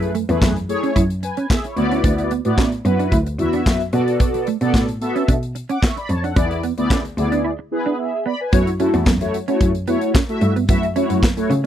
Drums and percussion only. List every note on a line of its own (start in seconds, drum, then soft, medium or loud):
0.02 closed hi-hat soft
0.15 closed hi-hat medium
0.29 closed hi-hat medium
0.42 kick loud
0.42 snare loud
0.42 clap medium
0.56 closed hi-hat soft
0.69 closed hi-hat medium
0.83 closed hi-hat soft
0.96 kick medium
0.96 closed hi-hat medium
1.10 closed hi-hat soft
1.23 closed hi-hat medium
1.37 closed hi-hat medium
1.50 kick loud
1.50 snare loud
1.50 clap medium
1.64 closed hi-hat soft
1.77 closed hi-hat medium
1.92 closed hi-hat medium
2.04 kick loud
2.04 closed hi-hat medium
2.18 closed hi-hat soft
2.31 closed hi-hat medium
2.45 closed hi-hat medium
2.58 kick loud
2.58 snare medium
2.58 clap medium
2.72 closed hi-hat medium
2.85 closed hi-hat medium
2.99 closed hi-hat medium
3.12 kick medium
3.12 closed hi-hat medium
3.26 closed hi-hat medium
3.39 closed hi-hat medium
3.53 closed hi-hat medium
3.66 kick loud
3.66 snare loud
3.66 clap medium
3.81 closed hi-hat soft
3.93 closed hi-hat medium
4.08 closed hi-hat soft
4.20 kick loud
4.20 closed hi-hat medium
4.34 closed hi-hat medium
4.47 closed hi-hat medium
4.61 closed hi-hat soft
4.74 kick loud
4.74 snare medium
4.74 clap medium
4.89 closed hi-hat medium
5.02 closed hi-hat medium
5.16 closed hi-hat soft
5.28 kick loud
5.28 closed hi-hat medium
5.43 closed hi-hat soft
5.56 closed hi-hat medium
5.69 closed hi-hat medium
5.83 kick loud
5.83 snare loud
5.83 clap medium
5.97 closed hi-hat soft
6.09 closed hi-hat medium
6.24 closed hi-hat soft
6.36 kick loud
6.36 closed hi-hat medium
6.51 closed hi-hat soft
6.63 closed hi-hat medium
6.78 closed hi-hat medium
6.90 kick loud
6.90 snare loud
6.90 clap medium
7.05 closed hi-hat medium
7.18 closed hi-hat medium
7.32 closed hi-hat soft
8.53 kick loud
8.53 closed hi-hat medium
8.67 closed hi-hat soft
8.80 closed hi-hat medium
8.94 closed hi-hat medium
9.06 kick loud
9.06 snare loud
9.06 clap medium
9.21 closed hi-hat medium
9.34 closed hi-hat medium
9.48 closed hi-hat soft
9.61 kick loud
9.61 closed hi-hat medium
9.75 closed hi-hat medium
9.87 closed hi-hat medium
10.01 closed hi-hat medium
10.15 kick loud
10.15 snare loud
10.15 clap medium
10.29 closed hi-hat soft
10.41 closed hi-hat medium
10.56 closed hi-hat soft
10.69 kick loud
10.69 closed hi-hat medium
10.83 closed hi-hat medium
10.96 closed hi-hat medium
11.10 closed hi-hat medium
11.23 kick loud
11.23 snare loud
11.23 clap medium
11.37 closed hi-hat medium
11.51 closed hi-hat medium